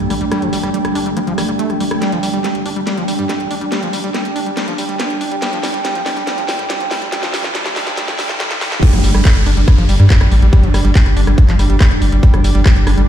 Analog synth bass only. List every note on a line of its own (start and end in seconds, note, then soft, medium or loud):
0.10 0.18 A1 loud
0.21 0.28 A1 medium
0.42 0.50 G1 medium
0.53 0.60 G1 loud
0.63 0.71 G1 medium
0.85 0.92 G1 medium
0.95 1.03 G1 loud
1.06 1.14 G1 medium
1.27 1.35 G1 medium
1.38 1.45 G1 loud
1.49 1.56 G1 medium
1.70 1.77 F1 medium
1.80 1.88 G1 loud
1.91 1.99 G1 medium
2.12 2.20 G1 medium
2.23 2.31 G1 loud
2.34 2.41 G1 loud
2.55 2.62 G1 medium
2.66 2.73 G1 loud
2.76 2.84 G1 medium
2.97 3.05 G1 medium
3.08 3.16 G1 loud
3.19 3.26 G2 medium
3.40 3.48 A1 medium
3.51 3.58 A1 loud
3.61 3.69 A1 medium
3.83 3.90 G1 medium
3.93 4.01 G1 loud
4.04 4.11 G1 medium
4.25 4.33 G1 medium
4.36 4.43 G1 loud
4.46 4.54 G1 medium
4.68 4.75 G1 medium
4.78 4.86 G1 loud
4.89 4.96 G1 medium
5.10 5.18 G1 medium
5.21 5.28 G1 loud
5.31 5.39 G1 medium
5.53 5.60 G1 medium
5.63 5.71 G1 loud
5.74 5.82 G1 medium
5.95 6.03 G1 medium
6.06 6.13 G1 loud
6.17 6.24 G1 loud
6.38 6.45 G1 medium
6.49 6.56 G1 loud
6.59 6.67 G2 medium
6.80 6.88 A1 medium
6.91 6.99 A1 loud
7.02 7.09 A1 medium
7.23 7.31 G1 medium
7.34 7.41 G1 loud
7.44 7.52 G1 medium
7.66 7.73 G1 medium
7.76 7.84 G1 loud
7.87 7.94 G1 loud
8.08 8.16 G1 medium
8.19 8.26 G1 loud
8.29 8.37 G1 medium
8.51 8.58 G1 medium
8.61 8.69 G1 loud
8.72 8.79 G1 medium
8.93 9.01 G1 medium
9.04 9.11 G1 loud
9.14 9.22 G1 medium
9.36 9.43 G1 medium
9.46 9.54 G1 loud
9.57 9.65 G1 loud
9.78 9.86 G1 medium
9.89 9.96 G1 loud
10.00 10.07 G2 medium
10.21 10.28 A1 medium
10.31 10.39 A1 loud
10.42 10.50 A1 loud
10.63 10.71 G1 medium
10.74 10.82 G1 loud
10.85 10.92 G1 loud
11.06 11.13 G1 medium
11.17 11.24 G1 loud
11.27 11.35 G1 loud
11.49 11.56 G1 medium
11.59 11.67 G1 loud
11.70 11.77 G1 medium
11.91 11.99 F1 medium
12.02 12.09 G1 loud
12.12 12.20 G1 medium
12.34 12.41 G1 medium
12.44 12.52 G1 loud
12.55 12.62 G1 loud
12.76 12.84 G1 medium
12.87 12.94 G1 loud
12.98 13.05 G1 medium